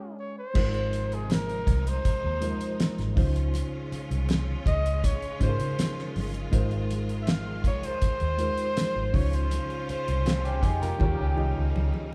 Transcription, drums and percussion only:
0.55 kick loud
0.55 crash loud
0.55 muted conga soft
0.74 closed hi-hat soft
0.93 closed hi-hat medium
1.12 closed hi-hat medium
1.30 snare loud
1.30 closed hi-hat medium
1.30 high conga medium
1.49 closed hi-hat soft
1.67 kick loud
1.67 closed hi-hat medium
1.67 muted conga medium
1.87 closed hi-hat medium
2.05 kick medium
2.05 closed hi-hat medium
2.42 closed hi-hat medium
2.61 closed hi-hat medium
2.80 snare loud
2.80 closed hi-hat loud
2.80 high conga medium
2.98 snare soft
2.98 closed hi-hat soft
3.17 kick loud
3.17 open hi-hat medium
3.17 high conga medium
3.36 closed hi-hat medium
3.54 closed hi-hat medium
3.54 muted conga soft
3.92 closed hi-hat medium
3.92 muted conga soft
4.11 closed hi-hat medium
4.29 snare loud
4.29 closed hi-hat medium
4.29 high conga medium
4.66 kick medium
4.66 closed hi-hat medium
4.66 muted conga medium
4.86 closed hi-hat medium
5.04 kick loud
5.04 closed hi-hat loud
5.04 low conga medium
5.22 closed hi-hat soft
5.41 kick medium
5.41 closed hi-hat medium
5.60 closed hi-hat medium
5.79 snare loud
5.79 closed hi-hat loud
5.79 high conga medium
5.99 snare soft
6.16 open hi-hat medium
6.16 high conga medium
6.34 closed hi-hat medium
6.53 kick loud
6.53 closed hi-hat medium
6.53 muted conga soft
6.71 closed hi-hat soft
6.91 closed hi-hat medium
6.91 muted conga soft
7.09 closed hi-hat medium
7.27 snare loud
7.27 closed hi-hat medium
7.27 high conga medium
7.64 kick loud
7.64 closed hi-hat medium
7.64 muted conga soft
7.83 closed hi-hat medium
8.02 kick medium
8.02 closed hi-hat loud
8.20 closed hi-hat soft
8.39 closed hi-hat medium
8.58 closed hi-hat medium
8.77 snare loud
8.77 closed hi-hat loud
8.77 high conga medium
9.14 kick loud
9.14 open hi-hat medium
9.14 high conga medium
9.33 closed hi-hat medium
9.51 closed hi-hat medium
9.51 muted conga soft
9.70 closed hi-hat soft
9.89 closed hi-hat medium
10.08 closed hi-hat medium
10.26 snare loud
10.26 closed hi-hat medium
10.26 high conga medium
10.45 closed hi-hat soft
10.63 kick loud
10.63 closed hi-hat medium
10.63 muted conga medium
10.82 closed hi-hat medium
10.82 low conga medium
11.00 kick loud
11.00 low conga medium
11.38 low conga medium
11.76 high conga medium
11.94 high conga medium

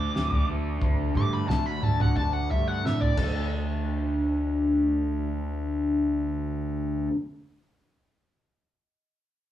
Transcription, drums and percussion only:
0.16 snare medium
0.31 floor tom medium
0.82 kick loud
0.82 floor tom medium
1.15 kick medium
1.15 mid tom medium
1.49 snare medium
1.49 floor tom medium
1.83 mid tom medium
2.00 floor tom medium
2.00 mid tom medium
2.17 kick medium
2.51 floor tom medium
2.86 snare medium
3.02 floor tom medium
3.17 kick medium
3.17 crash medium

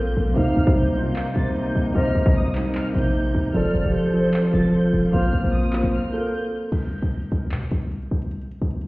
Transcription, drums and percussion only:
0.08 closed hi-hat medium
0.27 closed hi-hat medium
0.36 closed hi-hat medium
0.47 closed hi-hat medium
0.57 closed hi-hat medium
0.67 kick loud
0.67 closed hi-hat medium
0.76 closed hi-hat medium
0.87 closed hi-hat medium
0.96 closed hi-hat medium
1.16 clap loud
1.16 closed hi-hat medium
1.27 closed hi-hat medium
1.35 closed hi-hat medium
1.46 closed hi-hat medium
1.56 closed hi-hat medium
1.67 closed hi-hat medium
1.86 closed hi-hat medium
1.95 closed hi-hat medium
2.06 closed hi-hat medium
2.16 closed hi-hat medium
2.26 kick loud
2.26 closed hi-hat medium
2.35 closed hi-hat medium
2.45 closed hi-hat medium
2.55 clap medium
2.55 open hi-hat medium
2.75 clap loud
2.75 closed hi-hat medium
2.86 closed hi-hat medium
2.94 closed hi-hat medium
3.05 closed hi-hat medium
3.15 closed hi-hat medium
3.25 closed hi-hat medium
3.45 closed hi-hat medium
3.54 closed hi-hat medium
3.65 closed hi-hat medium
3.75 closed hi-hat medium
3.85 closed hi-hat medium
3.94 closed hi-hat medium
4.04 closed hi-hat medium
4.14 closed hi-hat medium
4.34 clap loud
4.34 closed hi-hat medium
4.45 closed hi-hat medium
4.53 closed hi-hat medium
4.64 closed hi-hat medium
4.74 closed hi-hat medium
4.84 closed hi-hat medium
5.04 closed hi-hat medium
5.13 closed hi-hat medium
5.24 closed hi-hat medium
5.34 closed hi-hat medium
5.44 closed hi-hat medium
5.53 closed hi-hat medium
5.63 closed hi-hat medium
5.73 clap medium
5.73 open hi-hat medium
6.72 closed hi-hat medium
6.72 crash loud
6.83 closed hi-hat medium
6.92 closed hi-hat medium
7.03 closed hi-hat medium
7.12 closed hi-hat medium
7.22 closed hi-hat medium
7.32 closed hi-hat medium
7.51 clap loud
7.51 closed hi-hat medium
7.62 closed hi-hat medium
7.71 closed hi-hat medium
7.82 closed hi-hat medium
7.92 closed hi-hat medium
8.02 closed hi-hat medium
8.22 closed hi-hat medium
8.31 closed hi-hat medium
8.41 closed hi-hat medium
8.51 closed hi-hat medium
8.62 closed hi-hat medium
8.71 closed hi-hat medium
8.81 closed hi-hat medium

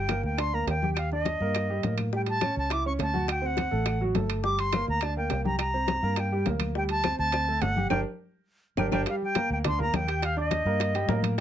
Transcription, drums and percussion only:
0.09 high bongo medium
0.09 high conga medium
0.09 high timbale medium
0.09 low timbale medium
0.09 claves medium
0.23 high bongo soft
0.38 high bongo medium
0.38 high conga soft
0.38 high timbale medium
0.38 claves medium
0.53 high conga soft
0.67 high bongo soft
0.67 low bongo medium
0.67 high conga soft
0.67 high timbale medium
0.67 low timbale medium
0.82 high bongo soft
0.82 high conga medium
0.96 high bongo medium
0.96 high conga soft
0.96 high timbale medium
0.96 claves medium
1.11 high bongo soft
1.11 high conga soft
1.25 high bongo medium
1.25 high conga medium
1.25 high timbale medium
1.25 low timbale medium
1.40 high bongo soft
1.54 high bongo medium
1.54 high conga soft
1.54 high timbale medium
1.54 claves medium
1.69 high conga soft
1.83 high bongo soft
1.83 low bongo medium
1.83 high conga medium
1.83 high timbale medium
1.83 low timbale medium
1.98 high bongo soft
1.98 high conga medium
1.98 high timbale medium
1.98 claves medium
2.12 high bongo medium
2.12 high conga soft
2.26 high bongo soft
2.26 high conga soft
2.26 high timbale medium
2.41 high bongo medium
2.41 high conga medium
2.41 high timbale medium
2.41 low timbale medium
2.41 claves medium
2.56 high bongo soft
2.70 high bongo medium
2.70 high conga soft
2.70 high timbale medium
2.70 claves medium
2.85 high conga soft
2.99 high bongo soft
2.99 low bongo medium
2.99 high conga soft
2.99 high timbale medium
2.99 low timbale medium
3.14 high bongo soft
3.14 high conga medium
3.28 high bongo medium
3.28 high timbale medium
3.28 claves medium
3.43 high bongo soft
3.43 high conga soft
3.57 high bongo medium
3.57 high conga medium
3.57 high timbale medium
3.57 low timbale medium
3.71 high bongo soft
3.86 high bongo medium
3.86 high conga soft
3.86 high timbale medium
3.86 claves medium
4.01 high conga soft
4.15 high bongo soft
4.15 low bongo medium
4.15 high conga medium
4.15 high timbale medium
4.15 low timbale medium
4.30 high bongo soft
4.30 high timbale medium
4.30 claves medium
4.44 high bongo medium
4.44 high conga soft
4.58 high bongo soft
4.58 high conga soft
4.58 high timbale medium
4.73 high bongo medium
4.73 high conga medium
4.73 high timbale medium
4.73 low timbale medium
4.73 claves medium
4.88 high bongo soft
5.01 high bongo medium
5.01 high conga soft
5.01 high timbale medium
5.01 claves medium
5.17 high conga soft
5.30 high bongo soft
5.30 low bongo medium
5.30 high conga soft
5.30 high timbale medium
5.30 low timbale medium
5.45 high bongo soft
5.45 high conga medium
5.59 high bongo medium
5.59 high conga soft
5.59 high timbale medium
5.59 claves medium
5.74 high bongo soft
5.74 high conga soft
5.88 high bongo medium
5.88 high conga medium
5.88 high timbale medium
5.88 low timbale medium
6.03 high bongo soft
6.16 high bongo medium
6.16 high conga soft
6.16 high timbale medium
6.16 claves medium
6.31 high conga soft
6.46 high bongo soft
6.46 low bongo medium
6.46 high conga medium
6.46 high timbale medium
6.46 low timbale medium
6.60 high bongo soft
6.60 high conga medium
6.60 high timbale medium
6.60 claves medium
6.75 high bongo medium
6.89 high bongo soft
6.89 high conga soft
6.89 high timbale medium
7.04 high bongo medium
7.04 high conga medium
7.04 high timbale medium
7.04 low timbale medium
7.04 claves medium
7.19 high bongo soft
7.32 high bongo medium
7.32 high conga soft
7.32 high timbale medium
7.32 claves medium
7.49 high conga soft
7.62 high bongo soft
7.62 low bongo medium
7.62 high conga soft
7.62 high timbale medium
7.62 low timbale medium
7.76 high bongo soft
7.76 high conga medium
7.90 low bongo medium
7.90 high conga medium
7.90 high timbale loud
7.90 claves medium
8.77 low bongo loud
8.77 high conga loud
8.77 high timbale medium
8.77 claves loud
8.92 low bongo loud
8.92 high conga medium
8.92 high timbale medium
8.92 claves medium
9.06 high bongo medium
9.06 high conga soft
9.06 high timbale medium
9.22 high conga soft
9.35 high bongo medium
9.35 high conga medium
9.35 high timbale medium
9.35 low timbale medium
9.51 high conga soft
9.64 high bongo medium
9.64 high conga soft
9.64 low conga medium
9.64 high timbale medium
9.80 high conga soft
9.80 low conga medium
9.93 high bongo medium
9.93 low bongo medium
9.93 high conga medium
9.93 high timbale medium
9.93 low timbale medium
10.08 high conga soft
10.08 high timbale medium
10.22 high bongo medium
10.22 high conga soft
10.22 high timbale medium
10.37 high bongo soft
10.37 high conga soft
10.51 high bongo medium
10.51 high conga medium
10.51 high timbale medium
10.51 low timbale medium
10.66 high bongo soft
10.80 high bongo medium
10.80 high conga soft
10.80 high timbale medium
10.94 high bongo soft
10.94 high conga soft
10.94 high timbale medium
11.08 high bongo medium
11.08 low bongo medium
11.08 high conga medium
11.08 low timbale medium
11.23 high conga medium
11.23 high timbale medium

